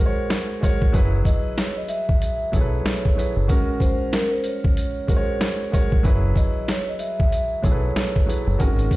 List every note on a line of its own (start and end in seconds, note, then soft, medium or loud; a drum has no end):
0.00 0.61 G#3 medium
0.00 0.62 F#4 medium
0.00 0.62 A#4 medium
0.00 0.95 C5 medium
0.00 0.06 C#5 medium
0.06 0.50 C#5 medium
0.30 snare loud
0.30 closed hi-hat loud
0.61 0.86 G#3 medium
0.61 0.86 F#4 medium
0.61 0.87 A#4 medium
0.61 0.87 C#5 loud
0.61 kick medium
0.61 closed hi-hat medium
0.82 kick loud
0.92 1.20 F#1 loud
0.92 1.85 F#3 medium
0.92 1.85 E4 medium
0.92 1.86 G#4 medium
0.92 1.86 B4 loud
0.92 kick loud
0.92 closed hi-hat medium
1.25 1.54 D#5 medium
1.25 kick medium
1.25 closed hi-hat medium
1.58 1.75 C#5 medium
1.58 snare loud
1.58 closed hi-hat loud
1.77 1.88 D#5 medium
1.88 2.49 E5 medium
1.88 closed hi-hat medium
2.09 kick loud
2.22 closed hi-hat medium
2.52 2.80 B1 medium
2.52 3.00 F#3 medium
2.52 3.01 E4 medium
2.52 3.01 G#4 medium
2.52 2.62 A4 medium
2.52 kick medium
2.52 closed hi-hat medium
2.56 3.47 C#5 medium
2.61 3.05 B4 medium
2.85 snare loud
2.85 snare medium
2.85 closed hi-hat loud
3.05 kick medium
3.15 3.41 F#3 medium
3.15 3.41 E4 medium
3.15 3.42 G#4 medium
3.15 3.42 B4 medium
3.15 closed hi-hat medium
3.36 3.49 F#1 medium
3.47 4.40 G#3 medium
3.47 4.41 C#4 loud
3.47 4.40 F#4 medium
3.47 4.41 A#4 medium
3.47 kick loud
3.47 closed hi-hat medium
3.80 4.09 C5 medium
3.80 kick medium
3.80 closed hi-hat medium
4.13 4.30 A#4 medium
4.13 snare loud
4.13 closed hi-hat loud
4.32 4.43 C5 medium
4.44 6.01 C#5 medium
4.44 closed hi-hat medium
4.64 kick loud
4.77 closed hi-hat loud
5.07 5.56 G#3 medium
5.07 5.56 F#4 medium
5.07 5.57 A#4 medium
5.07 5.17 C5 medium
5.07 kick medium
5.07 closed hi-hat medium
5.17 5.60 C#5 medium
5.41 snare loud
5.41 closed hi-hat loud
5.71 5.96 G#3 medium
5.71 5.97 F#4 medium
5.71 5.97 A#4 medium
5.71 5.98 C#5 loud
5.71 kick medium
5.71 closed hi-hat medium
5.92 kick loud
6.03 6.31 F#1 loud
6.03 6.95 F#3 medium
6.03 6.96 E4 medium
6.03 6.96 G#4 medium
6.03 6.97 B4 loud
6.03 kick loud
6.03 closed hi-hat medium
6.36 6.65 D#5 medium
6.36 kick medium
6.36 closed hi-hat medium
6.68 6.86 C#5 medium
6.68 snare loud
6.68 closed hi-hat loud
6.89 7.00 D#5 medium
6.99 7.60 E5 medium
6.99 closed hi-hat medium
7.20 kick loud
7.32 closed hi-hat medium
7.62 7.90 B1 medium
7.62 8.11 F#3 medium
7.62 8.12 E4 medium
7.62 8.12 G#4 medium
7.62 7.72 A4 medium
7.62 8.55 C#5 medium
7.62 kick medium
7.62 closed hi-hat medium
7.72 8.16 B4 medium
7.96 snare loud
7.96 snare medium
7.96 closed hi-hat loud
8.16 kick medium
8.26 8.51 F#3 medium
8.26 8.52 E4 medium
8.26 8.52 G#4 medium
8.26 8.53 B4 medium
8.26 closed hi-hat medium
8.47 8.58 F#1 medium
8.58 8.86 G#1 loud
8.58 8.97 G#3 medium
8.58 8.97 C#4 loud
8.58 8.97 F#4 medium
8.58 8.97 A#4 medium
8.58 kick loud
8.58 closed hi-hat medium
8.79 closed hi-hat medium
8.91 8.97 C5 medium
8.91 kick medium
8.91 closed hi-hat medium